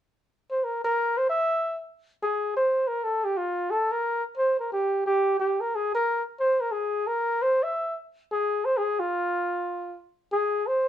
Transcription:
flugelhorn
0.51 C5
0.64 A#4
0.84 A#4
1.17 C5
1.29 E5
2.22 G#4
2.57 C5
2.88 A#4
3.04 A4
3.24 G4
3.37 F4
3.71 A4
3.92 A#4
4.37 C5
4.60 A#4
4.72 G4
5.06 G4
5.39 G4
5.61 A#4
5.75 G#4
5.95 A#4
6.39 C5
6.61 A#4
6.72 G#4
7.07 A#4
7.42 C5
7.63 E5
8.31 G#4
8.65 C5
8.77 G#4
8.99 F4
10.32 G#4
10.67 C5

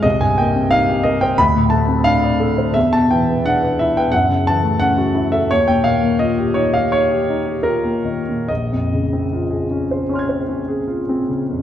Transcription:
grand piano
0.03 C2 D#5
0.21 G2 G#5
0.38 A#3 G5
0.56 C4
0.71 D#4 F5
0.89 G4
1.03 A#4 D#5
1.21 C5 G5
1.38 D2 B5
1.55 A2
1.70 A3 A5
1.88 C4
2.04 D4 F5
2.24 D5
2.40 A4
2.58 C5
2.74 E2 E5
2.93 B2 A5
3.11 E3 G5
3.29 B3
3.46 D4 F#5
3.63 B4
3.79 E4 E5
3.97 B4 G5
4.12 F#2 F#5
4.29 C#3
4.47 E3 A5
4.64 A3
4.80 C#4 F#5
4.98 F#4
5.15 E4
5.32 A4 E5
5.51 D#2 C#5
5.68 A#2 G5
5.84 D#3 F5
6.03 A#3
6.19 F4 D#5
6.38 G4
6.54 D#4 C#5
6.74 G4 F5
6.92 D#4 C#5
7.12 G4
7.30 D#4
7.46 G4
7.63 F4 A#4
7.84 A#3
8.05 D#3
8.29 A#2
8.48 A#1 D#5
8.72 F2
8.92 C#3
9.13 C4
9.33 F4
9.51 G#4
9.71 C#4
9.91 C5
10.09 C#4 C#5
10.14 C6 F6
10.19 G#6
10.29 C5
10.49 C#4
10.68 G#4
10.88 F4
11.09 C4
11.29 C#3
11.50 F2

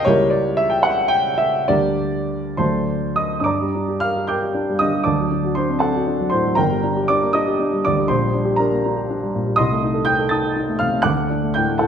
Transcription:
grand piano
0.05 C#2 G3 A#3 E4 G4 A#4 C#5
0.30 D5
0.57 E5
0.70 G5
0.83 F#5
1.08 G5
1.38 E5
1.68 D2 G3 A#3 D4 G4 A#4 D5
2.57 D2 F#3 A3 D4 C5 A5 C6
3.16 D#5 D#6
3.40 G2 D6 D#6
3.46 D5 A#5
3.61 G3
3.75 D4
3.88 G4
4.00 A#4 F5 F6
4.17 G4
4.27 A#4 G5 D6 G6
4.42 G4
4.54 D4
4.69 G3
4.79 D3 D#5 D#6
4.93 G3
5.04 D2 D5 A5 D6
5.19 F#3
5.32 D4
5.45 F#4
5.55 D4 C5 C6
5.69 C4
5.79 D4 A4 F#5 A5
5.95 F#4
6.07 D4
6.20 F#3
6.30 A2 C5 C6
6.45 F#3
6.55 G1 A#4 G5 A#5
6.71 G3
6.83 D4
6.97 G4
7.08 D4 D5 D6
7.23 A#3
7.33 D4 D#5 D#6
7.47 G4
7.59 D4
7.73 G3
7.85 D2 D5 D6
7.98 G3
8.08 A#1 C5 C6
8.23 G3
8.35 D4
8.45 G4
8.56 D4 A#4 A#5
8.72 A#3
8.85 D4
8.96 G4
9.10 D4
9.23 G3
9.35 A#2
9.47 G3
9.56 C2 D#5 C6 D#6
9.71 A3
9.83 D#4
9.94 A4
10.05 D#4 G5 G6
10.19 A4
10.29 D#4 A5 D#6 A6
10.44 A4
10.56 D#4
10.69 A3
10.79 C3 F5 F6
10.92 A3
11.02 D2 F#5 D6 F#6
11.18 A3
11.30 D4
11.43 A3
11.54 A2 G5 G6
11.68 A3
11.78 A2 A4 F#5 A5

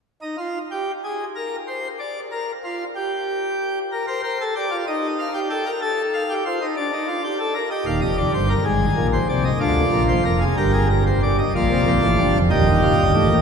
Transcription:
pipe organ
0.22 D#4
0.38 F4
0.71 G4
1.04 G#4
1.36 A#4
1.68 C5
1.99 D5
2.32 A#4
2.64 F4
2.96 G4
3.92 A#4
4.07 A#4 C5
4.23 A#4 C5
4.41 A4
4.56 G4 D5
4.71 F4
4.87 D#4 D#5
5.19 F5
5.34 G4
5.50 A4 G5
5.66 A#4
5.81 A4 A5
6.14 F5
6.30 G4
6.46 F4 C5
6.61 D#4
6.77 D4 D5
6.93 D#4
7.08 F4
7.24 G4
7.40 A4
7.55 A#4
7.71 G4 D#5
7.86 D#1 D#2 F5
8.02 F1 F2 D#5
8.18 D5
8.34 G1 G2 C5
8.49 A#4
8.64 G#1 G#2 G#4
8.97 A#1 A#2
9.13 C5
9.29 C2 C3 D5
9.45 D#5
9.60 D2 D3 F4 D5
9.92 A#1 A#2
10.08 C5
10.25 F1 F2 A#4
10.41 G#4
10.57 G1 G2 G4 A#4
10.73 G#4
10.89 A#4
11.07 C5
11.23 D5
11.39 D#5
11.55 A#1 A#2 F4 D5
11.71 C2 C3 A#3
11.87 A#1 A#2 C4
12.02 A1 A2
12.18 G1 G2 D4
12.34 F1 F2
12.50 D#1 D#2 D#4 G4 D#5
12.82 F4
12.98 G1 G2
13.14 A1 A2 G4
13.29 A#1 A#2

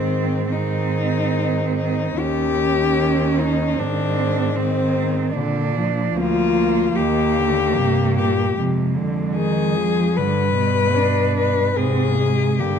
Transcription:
cello
Already playing: G#2 D#3 C4
0.52 D#3 C4 D#4
1.77 D#4
2.18 D#2 D#3 C#4 G4
3.38 D#4
3.79 G#2 D#3 C4 D4
4.55 D#3 C4
5.35 A#2 D3 D4
5.78 F3
6.17 D2 A#3 F4
6.96 D#2 D#3 A#3 G4
7.38 D3
7.76 G2 C3
8.16 A#2 G4
8.58 F2 C3 G#3
8.97 D3
9.36 D#3 G#4
9.77 F3
10.16 G2 D3 G3 B4
10.57 B2
10.96 D4
11.37 B4
11.75 G#2 C3 C4 G#4
12.19 G#3
12.59 G2 D3 A#3 G4

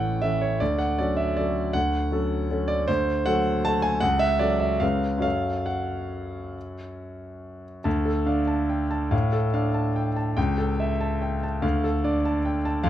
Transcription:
grand piano
Already playing: A1 E3 C#4 A4 F#5 G5
0.22 E3 C#4 A4 E5
0.42 C#5
0.60 D2 D5
0.79 F#5
0.98 F#3 C#4 A4 D5
1.17 E5
1.37 F#3 C#4 A4 D5
1.73 D2 F#5
2.11 F#3 C#4 A4
2.51 F#3 C#4 A4
2.68 D5
2.88 D2 C5
3.26 F#3 A3 A4 F#5
3.65 F#3 A3 A4 A5
3.82 G#5
4.00 C#2 F#5
4.19 E5
4.39 F#3 C#4 A4 D5
4.60 E5
4.80 C#2 G#3 C#4 B4 F5
5.18 F#2 F#3 C#4 A4
5.22 F5
5.66 F#5
7.84 D2 A5
8.05 A4
8.26 D4 F5
8.47 A5
8.69 G5
8.91 A5
9.11 A2 F5
9.33 A4
9.53 D4 F5
9.74 A5
9.96 G5
10.16 A5
10.37 C#2 G5
10.58 A4
10.80 E5
11.01 A5
11.22 G5
11.43 A5
11.62 D2 F5
11.84 A4
12.04 D4 D5
12.25 A5
12.45 G5
12.65 A5
12.84 F2 F5

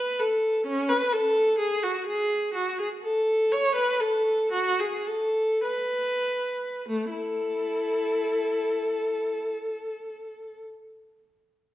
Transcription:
viola
Already playing: B4
0.20 A4
0.67 C#4
0.89 B4
1.12 A4
1.59 G#4
1.83 F#4
2.07 G#4
2.55 F#4
2.79 G#4
3.03 A4
3.52 C#5
3.76 B4
4.01 A4
4.53 F#4
4.80 G#4
5.07 A4
5.64 B4
6.89 A3
7.11 E4 A4

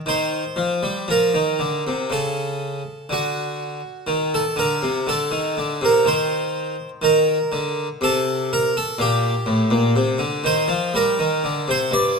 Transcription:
harpsichord
0.06 D#3 C5
0.56 F3
0.83 G3
1.08 F3 A#4
1.34 D#3
1.59 D3
1.87 C3
2.10 C#3 A4
3.09 D3 F#4
4.07 D#3
4.34 A4
4.56 D3 A#4
4.82 C3
5.07 D3 A4
5.31 D#3
5.57 D3
5.81 C3 A#4
6.05 D#3 C5
7.02 D#3 A#4
7.52 D3
8.01 C3 A4
8.53 A#4
8.77 A4
8.98 A#2 G4
9.46 A2
9.71 A#2
9.96 C3
10.18 D3
10.44 D#3 C5
10.68 F3
10.94 G3 A#4
11.19 D#3
11.44 D3
11.68 C3 C5
11.91 G2 D5

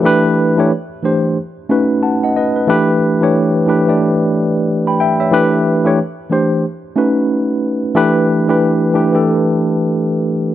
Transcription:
tine electric piano
Already playing: E4
0.03 E3 A3 D4 G4 B4
0.57 E3 A3 D4 G4 C#5
1.03 E3 A3 D4 G4 C5
1.69 A3 C#4 D#4 F#4 B4
2.03 F#5 A5
2.24 D#5 F#5
2.36 B4 D#5
2.56 B4
2.67 E3 A3 D4 G4 B4
3.21 E3 A3 D4 G4 C#5
3.66 E3 A3 D4 G4 B4
3.87 E3 A3 D4 G4 D5
4.87 G5 B5
5.00 E5 G5
5.20 C#5 E5
5.31 E3 A3 D4 G4 B4
5.84 E3 A3 D4 G4 C#5
6.30 E3 A3 D4 G4 C5
6.96 A3 C#4 D#4 F#4 B4
7.94 E3 A3 D4 G4 B4
8.48 E3 A3 D4 G4 B4
8.93 E3 A3 D4 G4 B4
9.13 E3 A3 D4 G4 A4

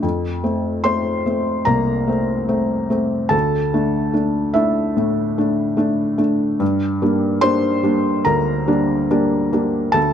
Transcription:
felt piano
0.03 F2
0.44 A3 C4
0.84 A3 C4 C5 C6
1.26 A3 C4
1.65 C2 A#3 A#5
2.07 A3 C4
2.48 A3 C4
2.90 A3 C4
3.29 D2 A4 A5
3.74 A3 D4
4.14 A3 D4
4.54 A3 D4 E4 E5
4.96 A2
5.38 A3 D4
5.77 A3 D4
6.18 A3 D4
6.60 G2
7.02 G3 A#3 D4
7.41 G3 A#3 D4 C5 C6
7.83 G3 A#3 D4
8.25 D2 A#4 A#5
8.67 G3 A#3 D4
9.11 G3 A#3 D4
9.52 G3 A#3 D4
9.92 D2 A4 A5

